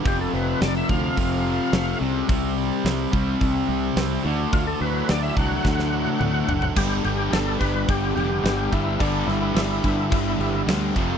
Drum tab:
CC |----------------|----------------|----------------|x-x-x-x-x-x-x-x-|
HH |o---o---o---o---|o---o---o---o---|o---o-----------|----------------|
SD |----o-------o---|----o-------o---|----o---oo------|----o-------o---|
T1 |----------------|----------------|-----------o----|----------------|
T2 |----------------|----------------|------------o---|----------------|
FT |----------------|----------------|--------------oo|----------------|
BD |o-----o-o-------|o-----o-o-------|o-----o-o-------|o-----o-o-----o-|

CC |x-x-x-x-x-x-x-x-|
HH |----------------|
SD |--o-o-------o---|
T1 |----------------|
T2 |----------------|
FT |----------------|
BD |o-----o-o-----o-|